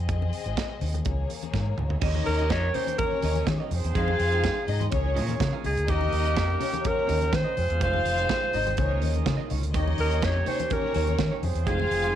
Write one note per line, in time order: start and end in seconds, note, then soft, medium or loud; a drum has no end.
0.00 0.28 F2 medium
0.00 1.04 C4 medium
0.00 1.04 G#4 medium
0.00 1.04 D#5 medium
0.09 kick loud
0.09 closed hi-hat medium
0.09 muted conga soft
0.22 high conga medium
0.33 open hi-hat medium
0.46 0.54 G#1 medium
0.46 closed hi-hat soft
0.57 kick loud
0.57 snare loud
0.57 closed hi-hat medium
0.57 muted conga soft
0.81 0.99 D#2 medium
0.81 open hi-hat medium
0.81 low conga medium
0.94 closed hi-hat soft
0.94 high conga medium
1.05 1.23 C#2 medium
1.05 2.00 A#3 medium
1.05 2.00 G#4 medium
1.05 2.00 C#5 medium
1.05 kick loud
1.05 closed hi-hat medium
1.05 muted conga soft
1.05 high conga medium
1.30 open hi-hat medium
1.30 muted conga soft
1.30 high conga soft
1.43 closed hi-hat soft
1.43 high conga medium
1.53 1.71 G#2 medium
1.53 kick loud
1.53 snare medium
1.53 muted conga soft
1.53 high conga medium
1.78 1.95 D2 medium
1.78 mid tom medium
1.78 muted conga soft
1.78 low conga medium
1.90 floor tom medium
2.01 2.19 D#2 loud
2.01 3.70 D#3 medium
2.01 3.70 A#3 medium
2.01 2.19 C#4 medium
2.01 3.44 C#4 medium
2.01 3.70 C#4 medium
2.01 2.71 D#4 loud
2.01 3.44 G4 medium
2.01 2.15 G4 medium
2.01 3.70 G4 medium
2.01 3.44 A#4 loud
2.01 2.14 A#4 loud
2.01 3.44 C#5 loud
2.01 2.71 D#5 loud
2.01 2.13 D#5 loud
2.01 kick loud
2.01 crash loud
2.01 muted conga soft
2.14 muted clean electric guitar stroke soft
2.14 high conga medium
2.25 2.51 D#2 medium
2.25 2.52 A#4 loud
2.25 muted clean electric guitar stroke soft
2.25 open hi-hat medium
2.25 muted conga soft
2.39 2.49 C#4 medium
2.39 2.49 G4 medium
2.39 2.50 A#4 medium
2.39 2.50 D#5 medium
2.39 closed hi-hat soft
2.50 2.68 F2 medium
2.50 2.76 C#5 loud
2.50 muted clean electric guitar stroke soft
2.50 kick loud
2.50 snare loud
2.50 closed hi-hat medium
2.62 muted clean electric guitar stroke medium
2.74 2.91 C#4 medium
2.74 2.94 C#4 medium
2.74 2.87 G4 medium
2.74 2.87 A#4 loud
2.74 2.98 C5 loud
2.74 2.94 C#5 medium
2.74 2.86 D#5 medium
2.74 open hi-hat medium
2.74 muted conga soft
2.74 low conga medium
2.87 muted clean electric guitar stroke soft
2.87 closed hi-hat medium
2.87 high conga medium
2.98 3.67 C#4 loud
2.98 3.67 A#4 medium
2.98 3.67 C#5 loud
2.98 kick loud
2.98 closed hi-hat medium
2.98 muted conga soft
2.98 high conga medium
3.12 muted clean electric guitar stroke soft
3.22 3.40 D#2 medium
3.22 3.36 C#4 medium
3.22 3.36 G4 medium
3.22 3.36 A#4 loud
3.22 3.35 D#5 loud
3.22 open hi-hat medium
3.22 muted conga soft
3.22 high conga medium
3.36 3.46 C#4 medium
3.36 3.47 G4 medium
3.36 3.47 A#4 medium
3.36 3.48 D#5 medium
3.36 closed hi-hat soft
3.36 high conga medium
3.47 3.56 D#3 loud
3.47 muted clean electric guitar stroke soft
3.47 kick loud
3.47 snare loud
3.47 closed hi-hat medium
3.47 muted conga soft
3.47 high conga medium
3.60 3.71 C#4 medium
3.60 3.71 G4 medium
3.60 3.72 A#4 medium
3.60 3.73 D#5 medium
3.71 3.80 F2 medium
3.71 4.91 F3 medium
3.71 4.91 G#3 medium
3.71 4.66 C4 medium
3.71 4.91 D#4 medium
3.71 4.66 G#4 medium
3.71 4.66 C5 loud
3.71 4.91 G5 loud
3.71 muted clean electric guitar stroke medium
3.71 open hi-hat medium
3.71 muted conga soft
3.71 low conga medium
3.84 3.92 E2 loud
3.84 muted clean electric guitar stroke soft
3.84 closed hi-hat medium
3.94 4.13 F2 loud
3.94 4.12 G#3 loud
3.94 4.09 D#4 medium
3.94 4.63 F4 medium
3.94 4.09 G4 medium
3.94 4.88 G#4 loud
3.94 4.08 C5 loud
3.94 4.64 F5 loud
3.94 kick loud
3.94 closed hi-hat medium
3.94 muted conga soft
4.08 muted clean electric guitar stroke medium
4.08 high conga medium
4.20 4.46 F2 medium
4.20 muted clean electric guitar stroke soft
4.20 open hi-hat medium
4.20 muted conga soft
4.32 4.42 G#3 medium
4.32 4.42 D#4 medium
4.32 4.43 G4 medium
4.32 4.43 C5 medium
4.32 closed hi-hat soft
4.43 4.60 G#3 medium
4.43 4.56 D#4 medium
4.43 4.55 G4 medium
4.43 4.55 C5 loud
4.43 kick loud
4.43 snare loud
4.43 closed hi-hat medium
4.43 muted conga soft
4.56 muted clean electric guitar stroke medium
4.68 4.85 G#2 loud
4.68 4.87 D#4 medium
4.68 4.87 D#5 loud
4.68 muted clean electric guitar stroke soft
4.68 open hi-hat medium
4.68 muted conga soft
4.68 low conga medium
4.80 4.91 G#3 medium
4.80 4.91 D#4 medium
4.80 4.92 G4 medium
4.80 4.92 C5 medium
4.80 closed hi-hat medium
4.80 high conga medium
4.91 5.18 C#2 loud
4.91 7.55 C#3 medium
4.91 7.55 A#3 medium
4.91 5.37 C#4 loud
4.91 5.63 C#4 medium
4.91 7.55 D#4 medium
4.91 5.88 F4 medium
4.91 5.63 G#4 medium
4.91 5.63 A#4 medium
4.91 5.37 C#5 loud
4.91 5.63 C#5 medium
4.91 muted clean electric guitar stroke medium
4.91 kick loud
4.91 closed hi-hat medium
4.91 muted conga soft
4.91 high conga medium
5.04 muted clean electric guitar stroke medium
5.15 5.34 A#2 loud
5.15 5.32 C#4 loud
5.15 5.29 F4 loud
5.15 5.28 A#4 loud
5.15 5.27 D#5 loud
5.15 open hi-hat medium
5.15 muted conga soft
5.15 high conga medium
5.28 muted clean electric guitar stroke soft
5.28 closed hi-hat soft
5.28 high conga medium
5.40 5.49 C#3 loud
5.40 muted clean electric guitar stroke medium
5.40 kick loud
5.40 snare loud
5.40 closed hi-hat medium
5.40 muted conga soft
5.40 high conga medium
5.53 5.62 C#4 medium
5.53 5.63 F4 medium
5.53 5.64 A#4 medium
5.53 5.65 F5 loud
5.64 5.74 C#2 loud
5.64 5.78 C#4 medium
5.64 5.77 F4 medium
5.64 5.91 G#4 loud
5.64 5.76 A#4 medium
5.64 5.76 D#5 medium
5.64 open hi-hat medium
5.64 muted conga soft
5.64 low conga medium
5.77 5.86 D2 medium
5.77 muted clean electric guitar stroke soft
5.77 closed hi-hat medium
5.87 6.06 D#2 loud
5.87 7.30 A#3 loud
5.87 6.05 C#4 loud
5.87 7.30 D#4 medium
5.87 6.57 D#4 loud
5.87 7.30 G4 medium
5.87 6.01 G4 loud
5.87 6.88 G4 loud
5.87 7.30 A#4 loud
5.87 6.01 A#4 medium
5.87 6.57 D#5 loud
5.87 6.01 D#5 loud
5.87 8.74 G5 medium
5.87 kick loud
5.87 closed hi-hat medium
5.87 muted conga soft
6.01 muted clean electric guitar stroke medium
6.01 high conga medium
6.13 6.37 D#2 medium
6.13 muted clean electric guitar stroke soft
6.13 open hi-hat medium
6.13 muted conga soft
6.25 6.36 C#4 medium
6.25 6.36 G4 medium
6.25 6.37 A#4 medium
6.25 6.37 D#5 medium
6.25 closed hi-hat soft
6.37 6.54 F2 loud
6.37 muted clean electric guitar stroke soft
6.37 kick loud
6.37 snare loud
6.37 closed hi-hat medium
6.49 muted clean electric guitar stroke soft
6.60 6.77 C#4 medium
6.60 6.80 C#4 medium
6.60 6.72 G4 medium
6.60 6.72 A#4 loud
6.60 6.80 C#5 loud
6.60 6.71 D#5 medium
6.60 open hi-hat medium
6.60 muted conga soft
6.60 low conga medium
6.73 muted clean electric guitar stroke soft
6.73 closed hi-hat medium
6.73 high conga medium
6.84 7.53 C#4 loud
6.84 7.37 A#4 loud
6.84 7.53 C#5 loud
6.84 muted clean electric guitar stroke soft
6.84 kick loud
6.84 closed hi-hat medium
6.84 muted conga soft
6.84 high conga medium
6.96 muted clean electric guitar stroke soft
7.07 7.26 D#2 medium
7.07 7.21 C#4 medium
7.07 7.20 G4 medium
7.07 7.20 A#4 medium
7.07 7.20 D#5 medium
7.07 open hi-hat medium
7.07 muted conga soft
7.07 high conga medium
7.21 7.31 C#4 medium
7.21 7.31 G4 medium
7.21 7.32 A#4 medium
7.21 7.33 D#5 medium
7.21 closed hi-hat soft
7.21 high conga medium
7.33 7.42 D#3 loud
7.33 7.83 C5 loud
7.33 kick loud
7.33 snare loud
7.33 closed hi-hat medium
7.33 high conga medium
7.44 7.56 C#4 medium
7.44 7.56 G4 medium
7.44 7.57 A#4 medium
7.44 7.57 D#5 medium
7.56 7.67 F2 loud
7.56 12.15 D#3 medium
7.56 8.76 G#3 medium
7.56 8.77 F4 medium
7.56 8.52 F4 loud
7.56 8.52 G#4 medium
7.56 8.52 C5 medium
7.56 8.52 F5 loud
7.56 muted clean electric guitar stroke medium
7.56 open hi-hat medium
7.56 muted conga soft
7.56 low conga medium
7.68 7.78 E2 loud
7.68 muted clean electric guitar stroke soft
7.68 closed hi-hat medium
7.80 7.99 F1 loud
7.80 7.98 G#3 medium
7.80 7.94 D#4 medium
7.80 8.49 F4 medium
7.80 7.93 G4 medium
7.80 7.92 C5 medium
7.80 9.23 C5 loud
7.80 8.50 F5 loud
7.80 kick loud
7.80 closed hi-hat medium
7.93 muted clean electric guitar stroke soft
7.93 high conga medium
8.05 8.23 F1 medium
8.05 muted clean electric guitar stroke soft
8.05 open hi-hat medium
8.18 8.28 G#3 medium
8.18 8.28 D#4 medium
8.18 8.29 G4 medium
8.18 8.29 C5 medium
8.18 closed hi-hat soft
8.29 8.46 G#3 medium
8.29 8.43 D#4 medium
8.29 8.42 G4 medium
8.29 8.41 C5 medium
8.29 kick loud
8.29 snare loud
8.29 closed hi-hat medium
8.29 muted conga soft
8.43 muted clean electric guitar stroke soft
8.53 8.71 G#1 medium
8.53 8.73 D#4 medium
8.53 8.73 D#5 loud
8.53 muted clean electric guitar stroke soft
8.53 open hi-hat medium
8.53 low conga medium
8.66 8.76 G#3 medium
8.66 8.76 D#4 medium
8.66 8.77 G4 medium
8.66 8.77 C5 medium
8.66 closed hi-hat medium
8.66 high conga medium
8.76 9.03 C#2 loud
8.76 11.41 A#3 medium
8.76 9.23 C#4 medium
8.76 11.40 C#4 medium
8.76 9.49 D#4 medium
8.76 9.74 F4 medium
8.76 9.49 G#4 medium
8.76 9.49 A#4 medium
8.76 9.23 C#5 loud
8.76 9.49 D#5 loud
8.76 muted clean electric guitar stroke soft
8.76 kick loud
8.76 closed hi-hat medium
8.76 muted conga soft
8.76 high conga medium
8.89 9.00 A#3 medium
8.89 9.00 D#4 medium
8.89 9.01 F4 medium
8.89 9.01 C#5 medium
9.01 9.19 D#2 medium
9.01 muted clean electric guitar stroke soft
9.01 open hi-hat medium
9.01 muted conga soft
9.01 high conga medium
9.13 muted clean electric guitar stroke soft
9.13 closed hi-hat soft
9.13 high conga medium
9.25 9.35 C#3 loud
9.25 muted clean electric guitar stroke soft
9.25 kick loud
9.25 snare loud
9.25 closed hi-hat medium
9.25 high conga medium
9.37 9.48 A#3 medium
9.37 9.49 D#4 medium
9.37 9.49 F4 medium
9.37 9.51 D#5 medium
9.49 9.60 C#2 medium
9.49 9.63 A#3 medium
9.49 9.63 D#4 medium
9.49 9.62 F4 medium
9.49 9.62 C#5 medium
9.49 open hi-hat medium
9.49 muted conga soft
9.49 low conga medium
9.63 9.72 D2 medium
9.63 muted clean electric guitar stroke soft
9.63 closed hi-hat medium
9.73 9.92 D#2 loud
9.73 9.91 A#3 medium
9.73 11.16 C#4 medium
9.73 9.87 D#4 loud
9.73 10.43 D#4 loud
9.73 11.41 G4 medium
9.73 11.16 G4 loud
9.73 9.86 G4 loud
9.73 11.16 A#4 medium
9.73 11.16 C#5 loud
9.73 9.86 C#5 loud
9.73 10.43 D#5 loud
9.73 kick loud
9.73 closed hi-hat medium
9.87 muted clean electric guitar stroke soft
9.87 high conga medium
9.98 10.23 D#2 medium
9.98 10.26 A#4 medium
9.98 muted clean electric guitar stroke soft
9.98 open hi-hat medium
10.10 10.20 A#3 medium
10.10 10.20 D#4 medium
10.10 10.21 G4 medium
10.10 10.21 C#5 medium
10.10 closed hi-hat soft
10.22 10.40 F2 medium
10.22 10.49 C#5 medium
10.22 kick loud
10.22 snare loud
10.22 closed hi-hat medium
10.22 muted conga soft
10.35 muted clean electric guitar stroke medium
10.45 10.63 A#3 medium
10.45 10.66 C#4 medium
10.45 10.59 D#4 loud
10.45 10.59 G4 loud
10.45 10.74 C5 loud
10.45 10.66 C#5 loud
10.45 10.58 C#5 loud
10.45 open hi-hat medium
10.45 muted conga soft
10.45 low conga medium
10.59 muted clean electric guitar stroke soft
10.59 closed hi-hat soft
10.59 high conga medium
10.70 11.39 C#4 loud
10.70 11.44 A#4 loud
10.70 11.39 C#5 loud
10.70 muted clean electric guitar stroke soft
10.70 kick loud
10.70 closed hi-hat medium
10.70 muted conga soft
10.70 high conga medium
10.83 muted clean electric guitar stroke soft
10.94 11.12 D#2 medium
10.94 11.08 A#3 medium
10.94 11.07 D#4 medium
10.94 11.07 G4 medium
10.94 11.07 C#5 loud
10.94 open hi-hat medium
10.94 high conga medium
11.07 11.18 A#3 medium
11.07 11.19 D#4 medium
11.07 11.19 G4 medium
11.07 11.19 C#5 medium
11.07 closed hi-hat soft
11.07 high conga medium
11.19 11.28 D#3 loud
11.19 muted clean electric guitar stroke medium
11.19 kick loud
11.19 snare loud
11.19 closed hi-hat medium
11.19 muted conga soft
11.19 high conga medium
11.31 11.43 A#3 medium
11.31 11.42 D#4 medium
11.31 11.43 G4 medium
11.31 11.44 C#5 loud
11.42 11.52 F2 loud
11.42 12.15 G#3 medium
11.42 12.15 C4 loud
11.42 12.15 F4 medium
11.42 12.15 G#4 medium
11.42 12.15 C5 medium
11.42 12.15 G5 medium
11.42 muted clean electric guitar stroke soft
11.42 open hi-hat medium
11.42 low conga medium
11.55 11.63 E2 medium
11.55 muted clean electric guitar stroke soft
11.55 closed hi-hat medium
11.67 11.84 F1 loud
11.67 11.84 G#3 medium
11.67 11.80 D#4 medium
11.67 12.15 F4 medium
11.67 11.79 G4 medium
11.67 12.15 G#4 loud
11.67 11.78 C5 loud
11.67 12.15 F5 loud
11.67 kick loud
11.67 closed hi-hat medium
11.79 muted clean electric guitar stroke soft
11.79 high conga medium
11.91 12.15 F1 medium
11.91 muted clean electric guitar stroke soft
11.91 open hi-hat medium
12.04 12.14 G#3 medium
12.04 12.14 D#4 medium
12.04 12.15 G4 medium
12.04 12.15 C5 medium
12.04 closed hi-hat medium